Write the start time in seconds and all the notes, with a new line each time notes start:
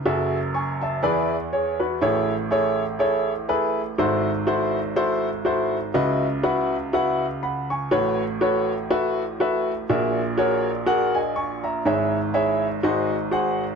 0.06 F#1 F#2 F#4 G#4 A4 E5
0.55 G#5 C#6
0.81 E5 A5
1.03 E2 E3 E4 G#4 B4 D5
1.53 G#4 C#5
1.80 F#4 B4
2.01 A1 A2 E4 G#4 A4 C#5
2.51 E4 G#4 A4 C#5
2.99 E4 G#4 A4 C#5
3.49 E4 G#4 A4 B4
3.98 G#1 G#2 E4 F#4 A4 C5
4.47 E4 F#4 A4 C5
4.96 E4 F#4 A4 C5
5.45 E4 F#4 A4 C5
5.94 C#2 C#3 E4 F#4 B4 D#5
6.43 E4 F#4 B4 F#5
6.93 E4 F#4 B4 F#5
7.43 F#5 B5
7.70 G#5 C#6
7.91 A1 A2 F#4 A4 B4 C#5
8.41 F#4 A4 B4 C#5
8.91 F#4 A4 B4 E5
9.40 F#4 A4 B4 E5
9.89 A#1 A#2 F#4 G#4 A#4 E5
10.38 F#4 G#4 A#4 C#5
10.86 F#4 G#4 A#4 F#5
11.15 D#5 G#5
11.36 G#5 C#6
11.64 E5 A#5
11.85 G#1 G#2 E4 G#4 C#5 E5
12.34 E4 G#4 C#5 E5
12.83 G#1 G#2 F#4 G#4 C5 D#5
13.31 F#4 G#4 C5 F#5